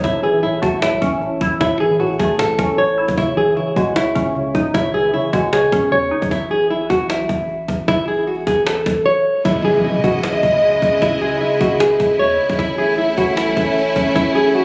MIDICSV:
0, 0, Header, 1, 7, 480
1, 0, Start_track
1, 0, Key_signature, 4, "minor"
1, 0, Tempo, 392157
1, 47, Time_signature, 4, 2, 24, 8
1, 17927, End_track
2, 0, Start_track
2, 0, Title_t, "Nylon-string guitar"
2, 0, Program_c, 0, 24
2, 46, Note_on_c, 0, 64, 97
2, 241, Note_off_c, 0, 64, 0
2, 285, Note_on_c, 0, 68, 71
2, 481, Note_off_c, 0, 68, 0
2, 526, Note_on_c, 0, 64, 74
2, 721, Note_off_c, 0, 64, 0
2, 765, Note_on_c, 0, 66, 81
2, 960, Note_off_c, 0, 66, 0
2, 1007, Note_on_c, 0, 64, 82
2, 1918, Note_off_c, 0, 64, 0
2, 1966, Note_on_c, 0, 64, 114
2, 2161, Note_off_c, 0, 64, 0
2, 2206, Note_on_c, 0, 68, 82
2, 2401, Note_off_c, 0, 68, 0
2, 2446, Note_on_c, 0, 66, 76
2, 2641, Note_off_c, 0, 66, 0
2, 2684, Note_on_c, 0, 68, 81
2, 2880, Note_off_c, 0, 68, 0
2, 2926, Note_on_c, 0, 69, 84
2, 3378, Note_off_c, 0, 69, 0
2, 3406, Note_on_c, 0, 73, 84
2, 3858, Note_off_c, 0, 73, 0
2, 3887, Note_on_c, 0, 64, 89
2, 4082, Note_off_c, 0, 64, 0
2, 4128, Note_on_c, 0, 68, 78
2, 4322, Note_off_c, 0, 68, 0
2, 4366, Note_on_c, 0, 64, 73
2, 4561, Note_off_c, 0, 64, 0
2, 4606, Note_on_c, 0, 66, 75
2, 4801, Note_off_c, 0, 66, 0
2, 4846, Note_on_c, 0, 64, 89
2, 5758, Note_off_c, 0, 64, 0
2, 5805, Note_on_c, 0, 64, 112
2, 6000, Note_off_c, 0, 64, 0
2, 6047, Note_on_c, 0, 68, 80
2, 6242, Note_off_c, 0, 68, 0
2, 6286, Note_on_c, 0, 64, 72
2, 6481, Note_off_c, 0, 64, 0
2, 6525, Note_on_c, 0, 66, 81
2, 6720, Note_off_c, 0, 66, 0
2, 6768, Note_on_c, 0, 68, 83
2, 7219, Note_off_c, 0, 68, 0
2, 7246, Note_on_c, 0, 73, 94
2, 7697, Note_off_c, 0, 73, 0
2, 7726, Note_on_c, 0, 64, 100
2, 7921, Note_off_c, 0, 64, 0
2, 7967, Note_on_c, 0, 68, 73
2, 8161, Note_off_c, 0, 68, 0
2, 8206, Note_on_c, 0, 64, 71
2, 8401, Note_off_c, 0, 64, 0
2, 8444, Note_on_c, 0, 66, 81
2, 8640, Note_off_c, 0, 66, 0
2, 8686, Note_on_c, 0, 64, 83
2, 9598, Note_off_c, 0, 64, 0
2, 9647, Note_on_c, 0, 64, 113
2, 9842, Note_off_c, 0, 64, 0
2, 9886, Note_on_c, 0, 68, 81
2, 10081, Note_off_c, 0, 68, 0
2, 10126, Note_on_c, 0, 66, 76
2, 10321, Note_off_c, 0, 66, 0
2, 10364, Note_on_c, 0, 68, 83
2, 10560, Note_off_c, 0, 68, 0
2, 10606, Note_on_c, 0, 69, 82
2, 11058, Note_off_c, 0, 69, 0
2, 11084, Note_on_c, 0, 73, 89
2, 11537, Note_off_c, 0, 73, 0
2, 11568, Note_on_c, 0, 64, 87
2, 11762, Note_off_c, 0, 64, 0
2, 11808, Note_on_c, 0, 68, 84
2, 12002, Note_off_c, 0, 68, 0
2, 12048, Note_on_c, 0, 64, 76
2, 12242, Note_off_c, 0, 64, 0
2, 12288, Note_on_c, 0, 66, 78
2, 12482, Note_off_c, 0, 66, 0
2, 12528, Note_on_c, 0, 64, 89
2, 13439, Note_off_c, 0, 64, 0
2, 13485, Note_on_c, 0, 64, 116
2, 13681, Note_off_c, 0, 64, 0
2, 13727, Note_on_c, 0, 68, 82
2, 13922, Note_off_c, 0, 68, 0
2, 13967, Note_on_c, 0, 64, 77
2, 14162, Note_off_c, 0, 64, 0
2, 14206, Note_on_c, 0, 66, 79
2, 14401, Note_off_c, 0, 66, 0
2, 14447, Note_on_c, 0, 68, 89
2, 14899, Note_off_c, 0, 68, 0
2, 14926, Note_on_c, 0, 73, 96
2, 15377, Note_off_c, 0, 73, 0
2, 15407, Note_on_c, 0, 64, 102
2, 15602, Note_off_c, 0, 64, 0
2, 15647, Note_on_c, 0, 68, 76
2, 15841, Note_off_c, 0, 68, 0
2, 15887, Note_on_c, 0, 64, 76
2, 16082, Note_off_c, 0, 64, 0
2, 16126, Note_on_c, 0, 66, 80
2, 16321, Note_off_c, 0, 66, 0
2, 16368, Note_on_c, 0, 64, 87
2, 17279, Note_off_c, 0, 64, 0
2, 17328, Note_on_c, 0, 64, 117
2, 17522, Note_off_c, 0, 64, 0
2, 17568, Note_on_c, 0, 68, 84
2, 17762, Note_off_c, 0, 68, 0
2, 17808, Note_on_c, 0, 66, 80
2, 17927, Note_off_c, 0, 66, 0
2, 17927, End_track
3, 0, Start_track
3, 0, Title_t, "String section"
3, 0, Program_c, 1, 48
3, 11568, Note_on_c, 1, 56, 75
3, 11568, Note_on_c, 1, 64, 91
3, 11569, Note_on_c, 1, 49, 83
3, 11569, Note_on_c, 1, 75, 79
3, 15369, Note_off_c, 1, 56, 0
3, 15369, Note_off_c, 1, 75, 0
3, 15370, Note_off_c, 1, 49, 0
3, 15407, Note_on_c, 1, 61, 81
3, 15408, Note_on_c, 1, 57, 82
3, 17927, Note_off_c, 1, 57, 0
3, 17927, Note_off_c, 1, 61, 0
3, 17927, Note_off_c, 1, 64, 0
3, 17927, End_track
4, 0, Start_track
4, 0, Title_t, "Synth pluck"
4, 0, Program_c, 2, 84
4, 51, Note_on_c, 2, 45, 94
4, 284, Note_on_c, 2, 52, 87
4, 510, Note_off_c, 2, 45, 0
4, 524, Note_on_c, 2, 45, 75
4, 758, Note_on_c, 2, 57, 87
4, 989, Note_off_c, 2, 45, 0
4, 1004, Note_on_c, 2, 45, 89
4, 1245, Note_on_c, 2, 61, 87
4, 1472, Note_off_c, 2, 45, 0
4, 1485, Note_off_c, 2, 52, 0
4, 1486, Note_on_c, 2, 45, 83
4, 1731, Note_on_c, 2, 64, 93
4, 1952, Note_off_c, 2, 45, 0
4, 1962, Note_off_c, 2, 57, 0
4, 1967, Note_on_c, 2, 45, 100
4, 2206, Note_on_c, 2, 52, 79
4, 2428, Note_off_c, 2, 45, 0
4, 2443, Note_on_c, 2, 45, 86
4, 2446, Note_off_c, 2, 61, 0
4, 2687, Note_on_c, 2, 57, 84
4, 2914, Note_off_c, 2, 45, 0
4, 2929, Note_off_c, 2, 64, 0
4, 2929, Note_on_c, 2, 45, 89
4, 3165, Note_on_c, 2, 61, 85
4, 3385, Note_off_c, 2, 45, 0
4, 3399, Note_on_c, 2, 45, 89
4, 3407, Note_off_c, 2, 52, 0
4, 3646, Note_on_c, 2, 64, 87
4, 3883, Note_off_c, 2, 45, 0
4, 3886, Note_off_c, 2, 61, 0
4, 3887, Note_off_c, 2, 57, 0
4, 3887, Note_off_c, 2, 64, 0
4, 3890, Note_on_c, 2, 49, 94
4, 4126, Note_on_c, 2, 52, 80
4, 4349, Note_off_c, 2, 49, 0
4, 4363, Note_on_c, 2, 49, 83
4, 4607, Note_on_c, 2, 56, 86
4, 4831, Note_off_c, 2, 49, 0
4, 4846, Note_on_c, 2, 49, 97
4, 5083, Note_on_c, 2, 61, 81
4, 5314, Note_off_c, 2, 49, 0
4, 5327, Note_off_c, 2, 52, 0
4, 5328, Note_on_c, 2, 49, 96
4, 5565, Note_on_c, 2, 63, 95
4, 5793, Note_off_c, 2, 49, 0
4, 5807, Note_off_c, 2, 56, 0
4, 5808, Note_on_c, 2, 49, 83
4, 6046, Note_on_c, 2, 52, 85
4, 6273, Note_off_c, 2, 49, 0
4, 6285, Note_off_c, 2, 61, 0
4, 6288, Note_on_c, 2, 49, 87
4, 6524, Note_on_c, 2, 56, 91
4, 6750, Note_off_c, 2, 49, 0
4, 6764, Note_on_c, 2, 49, 91
4, 6766, Note_off_c, 2, 63, 0
4, 7010, Note_on_c, 2, 61, 86
4, 7225, Note_off_c, 2, 49, 0
4, 7239, Note_on_c, 2, 49, 86
4, 7247, Note_off_c, 2, 52, 0
4, 7482, Note_on_c, 2, 63, 86
4, 7723, Note_off_c, 2, 49, 0
4, 7725, Note_off_c, 2, 63, 0
4, 7726, Note_off_c, 2, 56, 0
4, 7728, Note_off_c, 2, 61, 0
4, 17927, End_track
5, 0, Start_track
5, 0, Title_t, "808-style bass"
5, 0, Program_c, 3, 38
5, 47, Note_on_c, 3, 33, 111
5, 738, Note_off_c, 3, 33, 0
5, 766, Note_on_c, 3, 33, 107
5, 1132, Note_on_c, 3, 37, 105
5, 1151, Note_off_c, 3, 33, 0
5, 1240, Note_off_c, 3, 37, 0
5, 1247, Note_on_c, 3, 33, 105
5, 1708, Note_off_c, 3, 33, 0
5, 1727, Note_on_c, 3, 33, 105
5, 1957, Note_off_c, 3, 33, 0
5, 1967, Note_on_c, 3, 33, 116
5, 2658, Note_off_c, 3, 33, 0
5, 2688, Note_on_c, 3, 33, 108
5, 3148, Note_off_c, 3, 33, 0
5, 3167, Note_on_c, 3, 33, 101
5, 3750, Note_off_c, 3, 33, 0
5, 3774, Note_on_c, 3, 33, 100
5, 3880, Note_off_c, 3, 33, 0
5, 3887, Note_on_c, 3, 37, 110
5, 4348, Note_off_c, 3, 37, 0
5, 4607, Note_on_c, 3, 37, 106
5, 5068, Note_off_c, 3, 37, 0
5, 5087, Note_on_c, 3, 37, 103
5, 5548, Note_off_c, 3, 37, 0
5, 5567, Note_on_c, 3, 37, 99
5, 5797, Note_off_c, 3, 37, 0
5, 5807, Note_on_c, 3, 37, 115
5, 6268, Note_off_c, 3, 37, 0
5, 6526, Note_on_c, 3, 37, 101
5, 6988, Note_off_c, 3, 37, 0
5, 7006, Note_on_c, 3, 37, 108
5, 7247, Note_on_c, 3, 40, 98
5, 7265, Note_off_c, 3, 37, 0
5, 7430, Note_on_c, 3, 37, 103
5, 7448, Note_off_c, 3, 40, 0
5, 7605, Note_off_c, 3, 37, 0
5, 7614, Note_on_c, 3, 40, 104
5, 7719, Note_off_c, 3, 40, 0
5, 7727, Note_on_c, 3, 33, 111
5, 8418, Note_off_c, 3, 33, 0
5, 8446, Note_on_c, 3, 33, 107
5, 8814, Note_on_c, 3, 37, 103
5, 8832, Note_off_c, 3, 33, 0
5, 8921, Note_off_c, 3, 37, 0
5, 8926, Note_on_c, 3, 33, 104
5, 9387, Note_off_c, 3, 33, 0
5, 9406, Note_on_c, 3, 33, 99
5, 9637, Note_off_c, 3, 33, 0
5, 9647, Note_on_c, 3, 33, 116
5, 10338, Note_off_c, 3, 33, 0
5, 10367, Note_on_c, 3, 33, 106
5, 10828, Note_off_c, 3, 33, 0
5, 10847, Note_on_c, 3, 33, 105
5, 11077, Note_off_c, 3, 33, 0
5, 11568, Note_on_c, 3, 37, 112
5, 12028, Note_off_c, 3, 37, 0
5, 12287, Note_on_c, 3, 37, 103
5, 12748, Note_off_c, 3, 37, 0
5, 12766, Note_on_c, 3, 37, 105
5, 13228, Note_off_c, 3, 37, 0
5, 13247, Note_on_c, 3, 37, 101
5, 13477, Note_off_c, 3, 37, 0
5, 13487, Note_on_c, 3, 37, 115
5, 13948, Note_off_c, 3, 37, 0
5, 14207, Note_on_c, 3, 37, 110
5, 14668, Note_off_c, 3, 37, 0
5, 14686, Note_on_c, 3, 37, 112
5, 14928, Note_on_c, 3, 40, 100
5, 14946, Note_off_c, 3, 37, 0
5, 15110, Note_on_c, 3, 37, 104
5, 15129, Note_off_c, 3, 40, 0
5, 15285, Note_off_c, 3, 37, 0
5, 15295, Note_on_c, 3, 40, 100
5, 15400, Note_off_c, 3, 40, 0
5, 15407, Note_on_c, 3, 33, 113
5, 16098, Note_off_c, 3, 33, 0
5, 16127, Note_on_c, 3, 33, 109
5, 16494, Note_on_c, 3, 37, 107
5, 16512, Note_off_c, 3, 33, 0
5, 16601, Note_off_c, 3, 37, 0
5, 16606, Note_on_c, 3, 33, 106
5, 17068, Note_off_c, 3, 33, 0
5, 17086, Note_on_c, 3, 33, 103
5, 17317, Note_off_c, 3, 33, 0
5, 17327, Note_on_c, 3, 33, 114
5, 17927, Note_off_c, 3, 33, 0
5, 17927, End_track
6, 0, Start_track
6, 0, Title_t, "Impact"
6, 0, Program_c, 4, 103
6, 11568, Note_on_c, 4, 60, 92
6, 13487, Note_off_c, 4, 60, 0
6, 17927, End_track
7, 0, Start_track
7, 0, Title_t, "Cajon"
7, 47, Note_on_c, 9, 36, 117
7, 170, Note_off_c, 9, 36, 0
7, 286, Note_on_c, 9, 38, 45
7, 408, Note_off_c, 9, 38, 0
7, 529, Note_on_c, 9, 38, 43
7, 651, Note_off_c, 9, 38, 0
7, 767, Note_on_c, 9, 36, 99
7, 889, Note_off_c, 9, 36, 0
7, 1007, Note_on_c, 9, 38, 121
7, 1129, Note_off_c, 9, 38, 0
7, 1247, Note_on_c, 9, 36, 90
7, 1328, Note_on_c, 9, 38, 35
7, 1369, Note_off_c, 9, 36, 0
7, 1408, Note_off_c, 9, 38, 0
7, 1408, Note_on_c, 9, 38, 25
7, 1487, Note_off_c, 9, 38, 0
7, 1487, Note_on_c, 9, 38, 41
7, 1610, Note_off_c, 9, 38, 0
7, 1726, Note_on_c, 9, 36, 88
7, 1849, Note_off_c, 9, 36, 0
7, 1967, Note_on_c, 9, 36, 118
7, 2090, Note_off_c, 9, 36, 0
7, 2207, Note_on_c, 9, 38, 27
7, 2288, Note_off_c, 9, 38, 0
7, 2288, Note_on_c, 9, 38, 31
7, 2368, Note_off_c, 9, 38, 0
7, 2368, Note_on_c, 9, 38, 35
7, 2448, Note_off_c, 9, 38, 0
7, 2448, Note_on_c, 9, 38, 40
7, 2528, Note_off_c, 9, 38, 0
7, 2528, Note_on_c, 9, 38, 44
7, 2608, Note_off_c, 9, 38, 0
7, 2608, Note_on_c, 9, 38, 44
7, 2687, Note_on_c, 9, 36, 98
7, 2730, Note_off_c, 9, 38, 0
7, 2810, Note_off_c, 9, 36, 0
7, 2927, Note_on_c, 9, 38, 118
7, 2991, Note_off_c, 9, 38, 0
7, 2991, Note_on_c, 9, 38, 31
7, 3055, Note_off_c, 9, 38, 0
7, 3055, Note_on_c, 9, 38, 28
7, 3111, Note_off_c, 9, 38, 0
7, 3111, Note_on_c, 9, 38, 22
7, 3167, Note_off_c, 9, 38, 0
7, 3167, Note_on_c, 9, 36, 94
7, 3167, Note_on_c, 9, 38, 91
7, 3289, Note_off_c, 9, 36, 0
7, 3289, Note_off_c, 9, 38, 0
7, 3487, Note_on_c, 9, 38, 33
7, 3568, Note_off_c, 9, 38, 0
7, 3568, Note_on_c, 9, 38, 33
7, 3647, Note_off_c, 9, 38, 0
7, 3647, Note_on_c, 9, 38, 33
7, 3728, Note_off_c, 9, 38, 0
7, 3728, Note_on_c, 9, 38, 33
7, 3774, Note_on_c, 9, 36, 94
7, 3807, Note_off_c, 9, 38, 0
7, 3807, Note_on_c, 9, 38, 34
7, 3887, Note_off_c, 9, 36, 0
7, 3887, Note_on_c, 9, 36, 115
7, 3930, Note_off_c, 9, 38, 0
7, 4010, Note_off_c, 9, 36, 0
7, 4126, Note_on_c, 9, 38, 45
7, 4248, Note_off_c, 9, 38, 0
7, 4368, Note_on_c, 9, 38, 43
7, 4491, Note_off_c, 9, 38, 0
7, 4607, Note_on_c, 9, 36, 97
7, 4729, Note_off_c, 9, 36, 0
7, 4847, Note_on_c, 9, 38, 122
7, 4969, Note_off_c, 9, 38, 0
7, 5086, Note_on_c, 9, 36, 90
7, 5167, Note_on_c, 9, 38, 36
7, 5209, Note_off_c, 9, 36, 0
7, 5248, Note_off_c, 9, 38, 0
7, 5248, Note_on_c, 9, 38, 25
7, 5327, Note_off_c, 9, 38, 0
7, 5327, Note_on_c, 9, 38, 41
7, 5449, Note_off_c, 9, 38, 0
7, 5566, Note_on_c, 9, 36, 88
7, 5689, Note_off_c, 9, 36, 0
7, 5807, Note_on_c, 9, 36, 116
7, 5930, Note_off_c, 9, 36, 0
7, 6047, Note_on_c, 9, 38, 27
7, 6127, Note_off_c, 9, 38, 0
7, 6127, Note_on_c, 9, 38, 31
7, 6207, Note_off_c, 9, 38, 0
7, 6207, Note_on_c, 9, 38, 35
7, 6287, Note_off_c, 9, 38, 0
7, 6287, Note_on_c, 9, 38, 41
7, 6367, Note_off_c, 9, 38, 0
7, 6367, Note_on_c, 9, 38, 43
7, 6447, Note_off_c, 9, 38, 0
7, 6447, Note_on_c, 9, 38, 46
7, 6527, Note_on_c, 9, 36, 99
7, 6569, Note_off_c, 9, 38, 0
7, 6649, Note_off_c, 9, 36, 0
7, 6766, Note_on_c, 9, 38, 118
7, 6846, Note_off_c, 9, 38, 0
7, 6846, Note_on_c, 9, 38, 35
7, 6927, Note_off_c, 9, 38, 0
7, 6927, Note_on_c, 9, 38, 32
7, 7006, Note_off_c, 9, 38, 0
7, 7006, Note_on_c, 9, 36, 91
7, 7006, Note_on_c, 9, 38, 94
7, 7087, Note_off_c, 9, 38, 0
7, 7087, Note_on_c, 9, 38, 25
7, 7129, Note_off_c, 9, 36, 0
7, 7209, Note_off_c, 9, 38, 0
7, 7614, Note_on_c, 9, 36, 92
7, 7727, Note_off_c, 9, 36, 0
7, 7727, Note_on_c, 9, 36, 117
7, 7849, Note_off_c, 9, 36, 0
7, 7965, Note_on_c, 9, 38, 45
7, 8087, Note_off_c, 9, 38, 0
7, 8208, Note_on_c, 9, 38, 43
7, 8330, Note_off_c, 9, 38, 0
7, 8446, Note_on_c, 9, 36, 98
7, 8569, Note_off_c, 9, 36, 0
7, 8686, Note_on_c, 9, 38, 116
7, 8808, Note_off_c, 9, 38, 0
7, 8926, Note_on_c, 9, 36, 90
7, 9006, Note_on_c, 9, 38, 35
7, 9049, Note_off_c, 9, 36, 0
7, 9086, Note_off_c, 9, 38, 0
7, 9086, Note_on_c, 9, 38, 25
7, 9166, Note_off_c, 9, 38, 0
7, 9166, Note_on_c, 9, 38, 39
7, 9289, Note_off_c, 9, 38, 0
7, 9406, Note_on_c, 9, 36, 91
7, 9528, Note_off_c, 9, 36, 0
7, 9647, Note_on_c, 9, 36, 114
7, 9769, Note_off_c, 9, 36, 0
7, 9887, Note_on_c, 9, 38, 28
7, 9968, Note_off_c, 9, 38, 0
7, 9968, Note_on_c, 9, 38, 30
7, 10047, Note_off_c, 9, 38, 0
7, 10047, Note_on_c, 9, 38, 35
7, 10127, Note_off_c, 9, 38, 0
7, 10127, Note_on_c, 9, 38, 41
7, 10207, Note_off_c, 9, 38, 0
7, 10207, Note_on_c, 9, 38, 44
7, 10287, Note_off_c, 9, 38, 0
7, 10287, Note_on_c, 9, 38, 47
7, 10367, Note_on_c, 9, 36, 99
7, 10409, Note_off_c, 9, 38, 0
7, 10489, Note_off_c, 9, 36, 0
7, 10607, Note_on_c, 9, 38, 119
7, 10671, Note_off_c, 9, 38, 0
7, 10671, Note_on_c, 9, 38, 32
7, 10734, Note_off_c, 9, 38, 0
7, 10734, Note_on_c, 9, 38, 27
7, 10791, Note_off_c, 9, 38, 0
7, 10791, Note_on_c, 9, 38, 22
7, 10846, Note_off_c, 9, 38, 0
7, 10846, Note_on_c, 9, 38, 95
7, 10847, Note_on_c, 9, 36, 94
7, 10969, Note_off_c, 9, 36, 0
7, 10969, Note_off_c, 9, 38, 0
7, 11568, Note_on_c, 9, 36, 118
7, 11690, Note_off_c, 9, 36, 0
7, 11807, Note_on_c, 9, 38, 44
7, 11929, Note_off_c, 9, 38, 0
7, 12049, Note_on_c, 9, 38, 46
7, 12172, Note_off_c, 9, 38, 0
7, 12287, Note_on_c, 9, 36, 98
7, 12410, Note_off_c, 9, 36, 0
7, 12527, Note_on_c, 9, 38, 119
7, 12650, Note_off_c, 9, 38, 0
7, 12767, Note_on_c, 9, 36, 93
7, 12889, Note_off_c, 9, 36, 0
7, 12928, Note_on_c, 9, 38, 26
7, 13008, Note_off_c, 9, 38, 0
7, 13008, Note_on_c, 9, 38, 41
7, 13130, Note_off_c, 9, 38, 0
7, 13247, Note_on_c, 9, 36, 89
7, 13369, Note_off_c, 9, 36, 0
7, 13487, Note_on_c, 9, 36, 119
7, 13610, Note_off_c, 9, 36, 0
7, 13728, Note_on_c, 9, 38, 27
7, 13808, Note_off_c, 9, 38, 0
7, 13808, Note_on_c, 9, 38, 31
7, 13888, Note_off_c, 9, 38, 0
7, 13888, Note_on_c, 9, 38, 35
7, 13968, Note_off_c, 9, 38, 0
7, 13968, Note_on_c, 9, 38, 41
7, 14047, Note_off_c, 9, 38, 0
7, 14047, Note_on_c, 9, 38, 46
7, 14128, Note_off_c, 9, 38, 0
7, 14128, Note_on_c, 9, 38, 48
7, 14207, Note_on_c, 9, 36, 101
7, 14250, Note_off_c, 9, 38, 0
7, 14329, Note_off_c, 9, 36, 0
7, 14447, Note_on_c, 9, 38, 122
7, 14569, Note_off_c, 9, 38, 0
7, 14607, Note_on_c, 9, 38, 32
7, 14686, Note_off_c, 9, 38, 0
7, 14686, Note_on_c, 9, 38, 97
7, 14687, Note_on_c, 9, 36, 92
7, 14768, Note_off_c, 9, 38, 0
7, 14768, Note_on_c, 9, 38, 26
7, 14809, Note_off_c, 9, 36, 0
7, 14848, Note_off_c, 9, 38, 0
7, 14848, Note_on_c, 9, 38, 22
7, 14927, Note_off_c, 9, 38, 0
7, 14927, Note_on_c, 9, 38, 41
7, 15050, Note_off_c, 9, 38, 0
7, 15294, Note_on_c, 9, 36, 92
7, 15407, Note_off_c, 9, 36, 0
7, 15407, Note_on_c, 9, 36, 120
7, 15530, Note_off_c, 9, 36, 0
7, 15646, Note_on_c, 9, 38, 43
7, 15769, Note_off_c, 9, 38, 0
7, 15889, Note_on_c, 9, 38, 46
7, 16012, Note_off_c, 9, 38, 0
7, 16127, Note_on_c, 9, 36, 101
7, 16249, Note_off_c, 9, 36, 0
7, 16367, Note_on_c, 9, 38, 121
7, 16489, Note_off_c, 9, 38, 0
7, 16607, Note_on_c, 9, 36, 95
7, 16688, Note_on_c, 9, 38, 36
7, 16729, Note_off_c, 9, 36, 0
7, 16810, Note_off_c, 9, 38, 0
7, 17086, Note_on_c, 9, 36, 90
7, 17209, Note_off_c, 9, 36, 0
7, 17327, Note_on_c, 9, 36, 119
7, 17450, Note_off_c, 9, 36, 0
7, 17567, Note_on_c, 9, 38, 27
7, 17647, Note_off_c, 9, 38, 0
7, 17647, Note_on_c, 9, 38, 31
7, 17726, Note_off_c, 9, 38, 0
7, 17726, Note_on_c, 9, 38, 36
7, 17807, Note_off_c, 9, 38, 0
7, 17807, Note_on_c, 9, 38, 41
7, 17887, Note_off_c, 9, 38, 0
7, 17887, Note_on_c, 9, 38, 46
7, 17927, Note_off_c, 9, 38, 0
7, 17927, End_track
0, 0, End_of_file